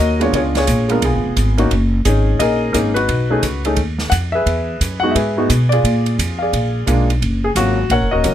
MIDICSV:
0, 0, Header, 1, 4, 480
1, 0, Start_track
1, 0, Key_signature, -6, "minor"
1, 0, Tempo, 343643
1, 468, Time_signature, 4, 2, 24, 8
1, 11653, End_track
2, 0, Start_track
2, 0, Title_t, "Grand piano"
2, 0, Program_c, 0, 0
2, 0, Note_on_c, 0, 66, 66
2, 0, Note_on_c, 0, 70, 64
2, 0, Note_on_c, 0, 73, 69
2, 0, Note_on_c, 0, 75, 86
2, 272, Note_on_c, 0, 56, 63
2, 274, Note_off_c, 0, 75, 0
2, 281, Note_on_c, 0, 59, 53
2, 293, Note_off_c, 0, 73, 0
2, 294, Note_on_c, 0, 62, 58
2, 301, Note_on_c, 0, 65, 63
2, 314, Note_on_c, 0, 73, 78
2, 449, Note_off_c, 0, 66, 0
2, 451, Note_off_c, 0, 70, 0
2, 464, Note_off_c, 0, 73, 0
2, 479, Note_off_c, 0, 65, 0
2, 485, Note_on_c, 0, 73, 83
2, 496, Note_on_c, 0, 68, 58
2, 500, Note_on_c, 0, 65, 62
2, 555, Note_off_c, 0, 73, 0
2, 777, Note_off_c, 0, 65, 0
2, 791, Note_off_c, 0, 68, 0
2, 796, Note_on_c, 0, 73, 83
2, 798, Note_on_c, 0, 65, 62
2, 812, Note_on_c, 0, 68, 63
2, 904, Note_off_c, 0, 56, 0
2, 908, Note_off_c, 0, 59, 0
2, 915, Note_off_c, 0, 62, 0
2, 1232, Note_off_c, 0, 73, 0
2, 1234, Note_on_c, 0, 56, 57
2, 1237, Note_off_c, 0, 65, 0
2, 1249, Note_on_c, 0, 59, 51
2, 1249, Note_on_c, 0, 62, 50
2, 1258, Note_on_c, 0, 65, 56
2, 1278, Note_on_c, 0, 70, 73
2, 1402, Note_off_c, 0, 56, 0
2, 1410, Note_off_c, 0, 59, 0
2, 1410, Note_off_c, 0, 62, 0
2, 1414, Note_off_c, 0, 65, 0
2, 1430, Note_off_c, 0, 70, 0
2, 1437, Note_off_c, 0, 68, 0
2, 1458, Note_on_c, 0, 68, 70
2, 1470, Note_on_c, 0, 65, 49
2, 1474, Note_on_c, 0, 59, 54
2, 2175, Note_off_c, 0, 68, 0
2, 2201, Note_on_c, 0, 58, 63
2, 2210, Note_on_c, 0, 61, 58
2, 2217, Note_on_c, 0, 63, 62
2, 2226, Note_on_c, 0, 66, 65
2, 2355, Note_off_c, 0, 65, 0
2, 2357, Note_off_c, 0, 59, 0
2, 2366, Note_off_c, 0, 58, 0
2, 2371, Note_off_c, 0, 61, 0
2, 2374, Note_off_c, 0, 63, 0
2, 2379, Note_off_c, 0, 66, 0
2, 2866, Note_on_c, 0, 68, 73
2, 2884, Note_on_c, 0, 61, 56
2, 2899, Note_on_c, 0, 63, 55
2, 3344, Note_on_c, 0, 75, 88
2, 3351, Note_off_c, 0, 68, 0
2, 3372, Note_on_c, 0, 68, 68
2, 3372, Note_on_c, 0, 70, 68
2, 3783, Note_off_c, 0, 61, 0
2, 3790, Note_off_c, 0, 63, 0
2, 3792, Note_off_c, 0, 70, 0
2, 3806, Note_on_c, 0, 58, 58
2, 3809, Note_off_c, 0, 68, 0
2, 3813, Note_on_c, 0, 70, 78
2, 3818, Note_on_c, 0, 61, 51
2, 3826, Note_on_c, 0, 63, 52
2, 3830, Note_on_c, 0, 68, 62
2, 3843, Note_off_c, 0, 75, 0
2, 3884, Note_off_c, 0, 70, 0
2, 4093, Note_off_c, 0, 58, 0
2, 4099, Note_off_c, 0, 61, 0
2, 4103, Note_off_c, 0, 63, 0
2, 4105, Note_off_c, 0, 68, 0
2, 4111, Note_on_c, 0, 71, 86
2, 4130, Note_on_c, 0, 63, 51
2, 4135, Note_on_c, 0, 66, 58
2, 4596, Note_off_c, 0, 63, 0
2, 4613, Note_on_c, 0, 61, 56
2, 4615, Note_on_c, 0, 57, 59
2, 4617, Note_on_c, 0, 63, 56
2, 4630, Note_on_c, 0, 68, 71
2, 4773, Note_off_c, 0, 61, 0
2, 4774, Note_off_c, 0, 57, 0
2, 4775, Note_off_c, 0, 63, 0
2, 4782, Note_off_c, 0, 68, 0
2, 5029, Note_off_c, 0, 71, 0
2, 5040, Note_off_c, 0, 66, 0
2, 5103, Note_on_c, 0, 57, 60
2, 5111, Note_on_c, 0, 61, 54
2, 5114, Note_on_c, 0, 68, 60
2, 5115, Note_on_c, 0, 63, 50
2, 5258, Note_off_c, 0, 57, 0
2, 5262, Note_off_c, 0, 61, 0
2, 5264, Note_off_c, 0, 63, 0
2, 5264, Note_off_c, 0, 68, 0
2, 5723, Note_on_c, 0, 78, 84
2, 5794, Note_off_c, 0, 78, 0
2, 6037, Note_on_c, 0, 76, 96
2, 6077, Note_on_c, 0, 71, 65
2, 6079, Note_on_c, 0, 68, 61
2, 6656, Note_off_c, 0, 76, 0
2, 6971, Note_off_c, 0, 71, 0
2, 6972, Note_off_c, 0, 68, 0
2, 6979, Note_on_c, 0, 78, 92
2, 7018, Note_on_c, 0, 56, 57
2, 7030, Note_on_c, 0, 59, 55
2, 7032, Note_on_c, 0, 66, 67
2, 7035, Note_on_c, 0, 63, 61
2, 7138, Note_on_c, 0, 76, 75
2, 7161, Note_off_c, 0, 78, 0
2, 7176, Note_off_c, 0, 56, 0
2, 7182, Note_off_c, 0, 59, 0
2, 7183, Note_off_c, 0, 66, 0
2, 7184, Note_off_c, 0, 63, 0
2, 7195, Note_on_c, 0, 71, 55
2, 7201, Note_on_c, 0, 68, 63
2, 7506, Note_on_c, 0, 56, 60
2, 7506, Note_on_c, 0, 59, 57
2, 7515, Note_on_c, 0, 66, 62
2, 7518, Note_on_c, 0, 63, 54
2, 7610, Note_off_c, 0, 76, 0
2, 7660, Note_off_c, 0, 56, 0
2, 7660, Note_off_c, 0, 59, 0
2, 7664, Note_off_c, 0, 66, 0
2, 7666, Note_off_c, 0, 63, 0
2, 7950, Note_on_c, 0, 74, 79
2, 7983, Note_off_c, 0, 68, 0
2, 8004, Note_on_c, 0, 65, 60
2, 8004, Note_on_c, 0, 68, 60
2, 8098, Note_off_c, 0, 71, 0
2, 8572, Note_off_c, 0, 74, 0
2, 8894, Note_off_c, 0, 65, 0
2, 8894, Note_off_c, 0, 68, 0
2, 8919, Note_on_c, 0, 77, 75
2, 8968, Note_on_c, 0, 74, 58
2, 8975, Note_on_c, 0, 68, 57
2, 9536, Note_off_c, 0, 77, 0
2, 9591, Note_on_c, 0, 56, 62
2, 9602, Note_on_c, 0, 62, 57
2, 9603, Note_on_c, 0, 58, 53
2, 9605, Note_on_c, 0, 65, 66
2, 9855, Note_off_c, 0, 74, 0
2, 9859, Note_off_c, 0, 68, 0
2, 9864, Note_off_c, 0, 56, 0
2, 9870, Note_off_c, 0, 62, 0
2, 9871, Note_off_c, 0, 58, 0
2, 9872, Note_off_c, 0, 65, 0
2, 10397, Note_on_c, 0, 68, 84
2, 10467, Note_off_c, 0, 68, 0
2, 10558, Note_on_c, 0, 54, 54
2, 10571, Note_on_c, 0, 61, 46
2, 10572, Note_on_c, 0, 58, 49
2, 10572, Note_on_c, 0, 66, 87
2, 10577, Note_on_c, 0, 65, 55
2, 10828, Note_off_c, 0, 54, 0
2, 10834, Note_off_c, 0, 58, 0
2, 10834, Note_off_c, 0, 61, 0
2, 10837, Note_off_c, 0, 65, 0
2, 11054, Note_off_c, 0, 66, 0
2, 11054, Note_on_c, 0, 78, 96
2, 11068, Note_on_c, 0, 73, 75
2, 11070, Note_on_c, 0, 70, 72
2, 11325, Note_off_c, 0, 78, 0
2, 11327, Note_off_c, 0, 70, 0
2, 11333, Note_on_c, 0, 75, 87
2, 11348, Note_on_c, 0, 70, 68
2, 11351, Note_on_c, 0, 66, 69
2, 11501, Note_on_c, 0, 54, 52
2, 11510, Note_off_c, 0, 66, 0
2, 11511, Note_on_c, 0, 58, 52
2, 11518, Note_on_c, 0, 61, 52
2, 11531, Note_on_c, 0, 66, 56
2, 11653, Note_off_c, 0, 54, 0
2, 11653, Note_off_c, 0, 58, 0
2, 11653, Note_off_c, 0, 61, 0
2, 11653, Note_off_c, 0, 66, 0
2, 11653, Note_off_c, 0, 70, 0
2, 11653, Note_off_c, 0, 73, 0
2, 11653, Note_off_c, 0, 75, 0
2, 11653, End_track
3, 0, Start_track
3, 0, Title_t, "Upright bass"
3, 0, Program_c, 1, 32
3, 0, Note_on_c, 1, 39, 82
3, 450, Note_off_c, 1, 39, 0
3, 460, Note_on_c, 1, 37, 72
3, 931, Note_off_c, 1, 37, 0
3, 941, Note_on_c, 1, 34, 83
3, 1411, Note_off_c, 1, 34, 0
3, 1422, Note_on_c, 1, 35, 66
3, 1570, Note_off_c, 1, 35, 0
3, 1570, Note_on_c, 1, 32, 52
3, 1717, Note_off_c, 1, 32, 0
3, 1725, Note_on_c, 1, 29, 59
3, 1886, Note_off_c, 1, 29, 0
3, 1906, Note_on_c, 1, 32, 81
3, 2374, Note_off_c, 1, 32, 0
3, 2386, Note_on_c, 1, 30, 83
3, 2854, Note_off_c, 1, 30, 0
3, 2870, Note_on_c, 1, 32, 85
3, 3336, Note_off_c, 1, 32, 0
3, 3344, Note_on_c, 1, 34, 65
3, 3814, Note_off_c, 1, 34, 0
3, 3831, Note_on_c, 1, 32, 80
3, 4298, Note_off_c, 1, 32, 0
3, 4308, Note_on_c, 1, 35, 71
3, 4776, Note_off_c, 1, 35, 0
3, 4784, Note_on_c, 1, 37, 70
3, 5251, Note_off_c, 1, 37, 0
3, 5259, Note_on_c, 1, 39, 64
3, 5732, Note_off_c, 1, 39, 0
3, 5749, Note_on_c, 1, 41, 80
3, 6217, Note_off_c, 1, 41, 0
3, 6228, Note_on_c, 1, 40, 73
3, 6696, Note_off_c, 1, 40, 0
3, 6714, Note_on_c, 1, 42, 76
3, 7179, Note_off_c, 1, 42, 0
3, 7197, Note_on_c, 1, 44, 70
3, 7661, Note_off_c, 1, 44, 0
3, 7678, Note_on_c, 1, 47, 79
3, 8141, Note_off_c, 1, 47, 0
3, 8155, Note_on_c, 1, 46, 77
3, 8619, Note_off_c, 1, 46, 0
3, 8638, Note_on_c, 1, 41, 78
3, 9100, Note_off_c, 1, 41, 0
3, 9121, Note_on_c, 1, 34, 77
3, 9582, Note_off_c, 1, 34, 0
3, 9600, Note_on_c, 1, 35, 80
3, 10061, Note_off_c, 1, 35, 0
3, 10079, Note_on_c, 1, 30, 74
3, 10540, Note_off_c, 1, 30, 0
3, 10548, Note_on_c, 1, 32, 76
3, 11014, Note_off_c, 1, 32, 0
3, 11027, Note_on_c, 1, 34, 71
3, 11187, Note_off_c, 1, 34, 0
3, 11187, Note_on_c, 1, 30, 53
3, 11345, Note_off_c, 1, 30, 0
3, 11353, Note_on_c, 1, 27, 58
3, 11499, Note_off_c, 1, 27, 0
3, 11507, Note_on_c, 1, 37, 82
3, 11653, Note_off_c, 1, 37, 0
3, 11653, End_track
4, 0, Start_track
4, 0, Title_t, "Drums"
4, 292, Note_on_c, 9, 51, 38
4, 432, Note_off_c, 9, 51, 0
4, 463, Note_on_c, 9, 36, 22
4, 468, Note_on_c, 9, 51, 50
4, 603, Note_off_c, 9, 36, 0
4, 608, Note_off_c, 9, 51, 0
4, 770, Note_on_c, 9, 51, 38
4, 771, Note_on_c, 9, 38, 33
4, 910, Note_off_c, 9, 51, 0
4, 911, Note_off_c, 9, 38, 0
4, 940, Note_on_c, 9, 44, 51
4, 940, Note_on_c, 9, 51, 62
4, 945, Note_on_c, 9, 36, 22
4, 1079, Note_off_c, 9, 44, 0
4, 1079, Note_off_c, 9, 51, 0
4, 1084, Note_off_c, 9, 36, 0
4, 1249, Note_on_c, 9, 51, 37
4, 1388, Note_off_c, 9, 51, 0
4, 1426, Note_on_c, 9, 51, 55
4, 1427, Note_on_c, 9, 36, 23
4, 1566, Note_off_c, 9, 51, 0
4, 1567, Note_off_c, 9, 36, 0
4, 1908, Note_on_c, 9, 36, 20
4, 1908, Note_on_c, 9, 44, 47
4, 1908, Note_on_c, 9, 51, 51
4, 2047, Note_off_c, 9, 36, 0
4, 2048, Note_off_c, 9, 44, 0
4, 2048, Note_off_c, 9, 51, 0
4, 2210, Note_on_c, 9, 51, 36
4, 2350, Note_off_c, 9, 51, 0
4, 2389, Note_on_c, 9, 36, 16
4, 2389, Note_on_c, 9, 51, 45
4, 2528, Note_off_c, 9, 36, 0
4, 2528, Note_off_c, 9, 51, 0
4, 2866, Note_on_c, 9, 44, 51
4, 2866, Note_on_c, 9, 51, 55
4, 2870, Note_on_c, 9, 36, 16
4, 3005, Note_off_c, 9, 44, 0
4, 3005, Note_off_c, 9, 51, 0
4, 3010, Note_off_c, 9, 36, 0
4, 3350, Note_on_c, 9, 51, 58
4, 3351, Note_on_c, 9, 36, 20
4, 3489, Note_off_c, 9, 51, 0
4, 3491, Note_off_c, 9, 36, 0
4, 3832, Note_on_c, 9, 44, 49
4, 3832, Note_on_c, 9, 51, 61
4, 3834, Note_on_c, 9, 36, 20
4, 3972, Note_off_c, 9, 44, 0
4, 3972, Note_off_c, 9, 51, 0
4, 3974, Note_off_c, 9, 36, 0
4, 4139, Note_on_c, 9, 51, 38
4, 4278, Note_off_c, 9, 51, 0
4, 4311, Note_on_c, 9, 36, 19
4, 4311, Note_on_c, 9, 51, 47
4, 4451, Note_off_c, 9, 36, 0
4, 4451, Note_off_c, 9, 51, 0
4, 4788, Note_on_c, 9, 44, 49
4, 4788, Note_on_c, 9, 51, 59
4, 4791, Note_on_c, 9, 36, 22
4, 4927, Note_off_c, 9, 44, 0
4, 4927, Note_off_c, 9, 51, 0
4, 4930, Note_off_c, 9, 36, 0
4, 5093, Note_on_c, 9, 51, 40
4, 5233, Note_off_c, 9, 51, 0
4, 5258, Note_on_c, 9, 51, 46
4, 5267, Note_on_c, 9, 36, 23
4, 5398, Note_off_c, 9, 51, 0
4, 5407, Note_off_c, 9, 36, 0
4, 5567, Note_on_c, 9, 38, 38
4, 5706, Note_off_c, 9, 38, 0
4, 5748, Note_on_c, 9, 44, 52
4, 5748, Note_on_c, 9, 51, 59
4, 5753, Note_on_c, 9, 36, 20
4, 5888, Note_off_c, 9, 44, 0
4, 5888, Note_off_c, 9, 51, 0
4, 5893, Note_off_c, 9, 36, 0
4, 6235, Note_on_c, 9, 36, 21
4, 6238, Note_on_c, 9, 51, 47
4, 6375, Note_off_c, 9, 36, 0
4, 6378, Note_off_c, 9, 51, 0
4, 6717, Note_on_c, 9, 36, 24
4, 6720, Note_on_c, 9, 44, 54
4, 6720, Note_on_c, 9, 51, 59
4, 6857, Note_off_c, 9, 36, 0
4, 6859, Note_off_c, 9, 44, 0
4, 6859, Note_off_c, 9, 51, 0
4, 7200, Note_on_c, 9, 36, 17
4, 7202, Note_on_c, 9, 51, 54
4, 7340, Note_off_c, 9, 36, 0
4, 7342, Note_off_c, 9, 51, 0
4, 7678, Note_on_c, 9, 44, 54
4, 7678, Note_on_c, 9, 51, 58
4, 7681, Note_on_c, 9, 36, 18
4, 7818, Note_off_c, 9, 44, 0
4, 7818, Note_off_c, 9, 51, 0
4, 7821, Note_off_c, 9, 36, 0
4, 7990, Note_on_c, 9, 51, 39
4, 8130, Note_off_c, 9, 51, 0
4, 8163, Note_on_c, 9, 36, 21
4, 8168, Note_on_c, 9, 51, 52
4, 8303, Note_off_c, 9, 36, 0
4, 8307, Note_off_c, 9, 51, 0
4, 8467, Note_on_c, 9, 51, 37
4, 8607, Note_off_c, 9, 51, 0
4, 8646, Note_on_c, 9, 36, 24
4, 8651, Note_on_c, 9, 44, 46
4, 8651, Note_on_c, 9, 51, 60
4, 8786, Note_off_c, 9, 36, 0
4, 8791, Note_off_c, 9, 44, 0
4, 8791, Note_off_c, 9, 51, 0
4, 9124, Note_on_c, 9, 36, 16
4, 9127, Note_on_c, 9, 51, 52
4, 9263, Note_off_c, 9, 36, 0
4, 9266, Note_off_c, 9, 51, 0
4, 9600, Note_on_c, 9, 44, 49
4, 9600, Note_on_c, 9, 51, 55
4, 9601, Note_on_c, 9, 36, 22
4, 9740, Note_off_c, 9, 44, 0
4, 9740, Note_off_c, 9, 51, 0
4, 9741, Note_off_c, 9, 36, 0
4, 9917, Note_on_c, 9, 51, 38
4, 10056, Note_off_c, 9, 51, 0
4, 10082, Note_on_c, 9, 36, 19
4, 10089, Note_on_c, 9, 51, 47
4, 10222, Note_off_c, 9, 36, 0
4, 10228, Note_off_c, 9, 51, 0
4, 10555, Note_on_c, 9, 36, 20
4, 10556, Note_on_c, 9, 44, 50
4, 10556, Note_on_c, 9, 51, 62
4, 10695, Note_off_c, 9, 36, 0
4, 10696, Note_off_c, 9, 44, 0
4, 10696, Note_off_c, 9, 51, 0
4, 11032, Note_on_c, 9, 36, 25
4, 11033, Note_on_c, 9, 51, 47
4, 11171, Note_off_c, 9, 36, 0
4, 11173, Note_off_c, 9, 51, 0
4, 11509, Note_on_c, 9, 36, 17
4, 11509, Note_on_c, 9, 44, 43
4, 11509, Note_on_c, 9, 51, 53
4, 11649, Note_off_c, 9, 36, 0
4, 11649, Note_off_c, 9, 44, 0
4, 11649, Note_off_c, 9, 51, 0
4, 11653, End_track
0, 0, End_of_file